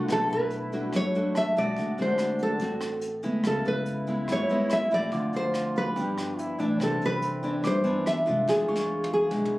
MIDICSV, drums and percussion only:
0, 0, Header, 1, 2, 480
1, 0, Start_track
1, 0, Tempo, 419580
1, 95, Time_signature, 4, 2, 24, 8
1, 10966, End_track
2, 0, Start_track
2, 0, Title_t, "Drums"
2, 97, Note_on_c, 9, 36, 64
2, 102, Note_on_c, 9, 37, 60
2, 102, Note_on_c, 9, 42, 44
2, 212, Note_off_c, 9, 36, 0
2, 217, Note_off_c, 9, 37, 0
2, 217, Note_off_c, 9, 42, 0
2, 342, Note_on_c, 9, 42, 24
2, 456, Note_off_c, 9, 42, 0
2, 577, Note_on_c, 9, 42, 37
2, 691, Note_off_c, 9, 42, 0
2, 824, Note_on_c, 9, 42, 28
2, 938, Note_off_c, 9, 42, 0
2, 1059, Note_on_c, 9, 37, 59
2, 1059, Note_on_c, 9, 42, 42
2, 1061, Note_on_c, 9, 36, 63
2, 1174, Note_off_c, 9, 37, 0
2, 1174, Note_off_c, 9, 42, 0
2, 1176, Note_off_c, 9, 36, 0
2, 1310, Note_on_c, 9, 42, 26
2, 1424, Note_off_c, 9, 42, 0
2, 1546, Note_on_c, 9, 37, 65
2, 1546, Note_on_c, 9, 42, 43
2, 1660, Note_off_c, 9, 37, 0
2, 1660, Note_off_c, 9, 42, 0
2, 1787, Note_on_c, 9, 42, 28
2, 1901, Note_off_c, 9, 42, 0
2, 2020, Note_on_c, 9, 36, 61
2, 2021, Note_on_c, 9, 42, 43
2, 2134, Note_off_c, 9, 36, 0
2, 2135, Note_off_c, 9, 42, 0
2, 2262, Note_on_c, 9, 42, 27
2, 2376, Note_off_c, 9, 42, 0
2, 2494, Note_on_c, 9, 37, 63
2, 2494, Note_on_c, 9, 42, 45
2, 2609, Note_off_c, 9, 37, 0
2, 2609, Note_off_c, 9, 42, 0
2, 2731, Note_on_c, 9, 42, 29
2, 2845, Note_off_c, 9, 42, 0
2, 2966, Note_on_c, 9, 42, 49
2, 2973, Note_on_c, 9, 36, 60
2, 3080, Note_off_c, 9, 42, 0
2, 3088, Note_off_c, 9, 36, 0
2, 3211, Note_on_c, 9, 37, 61
2, 3211, Note_on_c, 9, 42, 28
2, 3325, Note_off_c, 9, 37, 0
2, 3325, Note_off_c, 9, 42, 0
2, 3449, Note_on_c, 9, 42, 51
2, 3563, Note_off_c, 9, 42, 0
2, 3691, Note_on_c, 9, 42, 28
2, 3805, Note_off_c, 9, 42, 0
2, 3932, Note_on_c, 9, 37, 66
2, 3932, Note_on_c, 9, 42, 45
2, 3933, Note_on_c, 9, 36, 61
2, 4047, Note_off_c, 9, 36, 0
2, 4047, Note_off_c, 9, 37, 0
2, 4047, Note_off_c, 9, 42, 0
2, 4175, Note_on_c, 9, 42, 28
2, 4289, Note_off_c, 9, 42, 0
2, 4413, Note_on_c, 9, 42, 42
2, 4527, Note_off_c, 9, 42, 0
2, 4653, Note_on_c, 9, 42, 28
2, 4768, Note_off_c, 9, 42, 0
2, 4895, Note_on_c, 9, 37, 65
2, 4895, Note_on_c, 9, 42, 39
2, 4896, Note_on_c, 9, 36, 60
2, 5009, Note_off_c, 9, 37, 0
2, 5009, Note_off_c, 9, 42, 0
2, 5010, Note_off_c, 9, 36, 0
2, 5136, Note_on_c, 9, 42, 25
2, 5250, Note_off_c, 9, 42, 0
2, 5373, Note_on_c, 9, 37, 63
2, 5373, Note_on_c, 9, 42, 43
2, 5488, Note_off_c, 9, 37, 0
2, 5488, Note_off_c, 9, 42, 0
2, 5610, Note_on_c, 9, 42, 27
2, 5725, Note_off_c, 9, 42, 0
2, 5852, Note_on_c, 9, 42, 45
2, 5857, Note_on_c, 9, 36, 64
2, 5967, Note_off_c, 9, 42, 0
2, 5971, Note_off_c, 9, 36, 0
2, 6093, Note_on_c, 9, 42, 26
2, 6207, Note_off_c, 9, 42, 0
2, 6337, Note_on_c, 9, 37, 57
2, 6337, Note_on_c, 9, 42, 47
2, 6452, Note_off_c, 9, 37, 0
2, 6452, Note_off_c, 9, 42, 0
2, 6585, Note_on_c, 9, 42, 28
2, 6699, Note_off_c, 9, 42, 0
2, 6821, Note_on_c, 9, 36, 57
2, 6825, Note_on_c, 9, 42, 48
2, 6936, Note_off_c, 9, 36, 0
2, 6939, Note_off_c, 9, 42, 0
2, 7066, Note_on_c, 9, 37, 59
2, 7066, Note_on_c, 9, 42, 28
2, 7180, Note_off_c, 9, 37, 0
2, 7180, Note_off_c, 9, 42, 0
2, 7306, Note_on_c, 9, 42, 45
2, 7420, Note_off_c, 9, 42, 0
2, 7544, Note_on_c, 9, 42, 30
2, 7659, Note_off_c, 9, 42, 0
2, 7780, Note_on_c, 9, 36, 67
2, 7786, Note_on_c, 9, 37, 59
2, 7786, Note_on_c, 9, 42, 50
2, 7895, Note_off_c, 9, 36, 0
2, 7901, Note_off_c, 9, 37, 0
2, 7901, Note_off_c, 9, 42, 0
2, 8024, Note_on_c, 9, 42, 28
2, 8138, Note_off_c, 9, 42, 0
2, 8258, Note_on_c, 9, 42, 45
2, 8373, Note_off_c, 9, 42, 0
2, 8497, Note_on_c, 9, 42, 27
2, 8611, Note_off_c, 9, 42, 0
2, 8738, Note_on_c, 9, 36, 55
2, 8738, Note_on_c, 9, 37, 65
2, 8738, Note_on_c, 9, 42, 44
2, 8852, Note_off_c, 9, 36, 0
2, 8852, Note_off_c, 9, 37, 0
2, 8852, Note_off_c, 9, 42, 0
2, 8984, Note_on_c, 9, 42, 26
2, 9098, Note_off_c, 9, 42, 0
2, 9224, Note_on_c, 9, 37, 59
2, 9224, Note_on_c, 9, 42, 46
2, 9338, Note_off_c, 9, 37, 0
2, 9338, Note_off_c, 9, 42, 0
2, 9465, Note_on_c, 9, 42, 30
2, 9580, Note_off_c, 9, 42, 0
2, 9698, Note_on_c, 9, 36, 62
2, 9704, Note_on_c, 9, 38, 43
2, 9812, Note_off_c, 9, 36, 0
2, 9819, Note_off_c, 9, 38, 0
2, 10016, Note_on_c, 9, 38, 43
2, 10130, Note_off_c, 9, 38, 0
2, 10340, Note_on_c, 9, 48, 50
2, 10454, Note_off_c, 9, 48, 0
2, 10650, Note_on_c, 9, 47, 60
2, 10654, Note_on_c, 9, 36, 62
2, 10764, Note_off_c, 9, 47, 0
2, 10768, Note_off_c, 9, 36, 0
2, 10815, Note_on_c, 9, 45, 49
2, 10929, Note_off_c, 9, 45, 0
2, 10966, End_track
0, 0, End_of_file